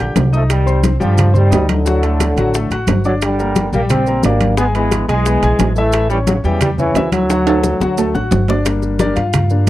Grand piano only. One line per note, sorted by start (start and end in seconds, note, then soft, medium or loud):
0.00 0.27 G4 medium
0.00 0.27 G5 medium
0.00 0.27 G6 medium
0.33 0.61 D#4 medium
0.33 0.61 D#5 medium
0.33 0.61 D#6 medium
0.66 0.94 C4 medium
0.66 0.94 C5 medium
0.66 0.95 C6 medium
1.00 1.28 G3 medium
1.00 1.28 G4 medium
1.00 1.29 G5 medium
1.32 1.48 C4 medium
1.32 1.48 C5 medium
1.32 1.48 C6 medium
1.50 1.79 D#4 medium
1.50 1.79 D#5 medium
1.50 1.79 D#6 medium
1.85 1.99 F#3 medium
1.85 2.00 F#4 medium
1.85 2.00 F#5 medium
2.02 2.31 A3 medium
2.02 2.31 A4 medium
2.02 2.31 A5 medium
2.37 2.51 F#3 medium
2.37 2.52 F#4 medium
2.37 2.52 F#5 medium
2.54 2.68 A3 medium
2.54 2.68 A4 medium
2.54 2.69 A5 medium
2.71 2.99 F#4 medium
2.71 2.99 F#5 medium
2.71 3.00 F#6 medium
3.05 3.33 D4 medium
3.05 3.33 D5 medium
3.05 3.33 D6 medium
3.39 3.67 A#3 medium
3.39 3.67 A#4 medium
3.39 3.68 A#5 medium
3.73 4.01 G3 medium
3.73 4.01 G4 medium
3.73 4.01 G5 medium
4.07 4.21 A#3 medium
4.07 4.22 A#4 medium
4.07 4.22 A#5 medium
4.25 4.52 D4 medium
4.25 4.53 D5 medium
4.25 4.53 D6 medium
4.58 4.72 G#3 medium
4.58 4.72 G#4 medium
4.58 4.72 G#5 medium
4.75 5.03 B3 medium
4.75 5.03 B4 medium
4.75 5.03 B5 medium
5.08 5.23 G#3 medium
5.08 5.23 G#4 medium
5.08 5.23 G#5 medium
5.26 5.40 B3 medium
5.26 5.40 B4 medium
5.26 5.40 B5 medium
5.43 5.71 G#4 medium
5.43 5.71 G#5 medium
5.43 5.71 G#6 medium
5.78 6.05 E4 medium
5.78 6.05 E5 medium
5.78 6.05 E6 medium
6.11 6.39 C#4 medium
6.11 6.39 C#5 medium
6.11 6.39 C#6 medium
6.44 6.72 G3 medium
6.44 6.73 G4 medium
6.44 6.73 G5 medium
6.79 6.93 C#4 medium
6.79 6.93 C#5 medium
6.79 6.93 C#6 medium
6.95 7.23 E4 medium
6.95 7.24 E5 medium
6.95 7.24 E6 medium
7.30 7.44 F#3 medium
7.30 7.44 F#4 medium
7.30 7.44 F#5 medium
7.47 7.75 A3 medium
7.47 7.75 A4 medium
7.47 7.75 A5 medium
7.81 7.95 F#3 medium
7.81 7.95 F#4 medium
7.81 7.95 F#5 medium
7.98 8.12 A3 medium
7.98 8.12 A4 medium
7.98 8.12 A5 medium
8.14 8.42 F#4 medium
8.14 8.42 F#5 medium
8.14 8.43 F#6 medium
8.49 8.63 D4 medium
8.49 8.63 D5 medium
8.49 8.63 D6 medium
8.65 9.13 G3 medium
8.65 9.14 A#3 medium
8.65 8.99 D4 medium
9.00 9.16 D4 medium
9.00 9.16 G4 medium
9.00 9.17 A#4 medium
9.00 9.16 D5 medium
9.16 9.64 F4 medium
9.16 9.63 F5 medium
9.51 9.66 G3 soft
9.51 9.66 A#3 soft
9.51 9.66 D4 medium